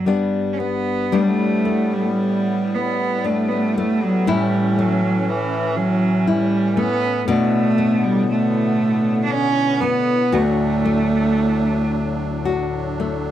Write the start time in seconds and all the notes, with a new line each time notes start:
Already playing: G2
0.05 G3 B3 D4
0.53 C#4
0.59 B3
1.12 A2 G3 A3 B3 D4
1.22 G3
1.28 A3
1.65 A3
1.94 G3
2.02 A3
2.09 G3
2.75 B3
3.24 A3 D4
3.49 A3 B3
3.74 G3 A3
3.79 A3
4.04 F#3
4.27 A2 E3 G3 C#4 E4
4.79 F#3 A3
5.23 F#3
5.29 E3
5.76 F#3
6.27 G3 E4
6.77 A3 B3
7.28 B2 D3 A3 B3 D4
7.78 B3
8.03 G3
8.29 A3
9.24 D4
9.31 C#4
9.81 B3
10.32 D2 F#3 A3 D4 F#4
10.85 A3
12.45 F#4
13.00 A3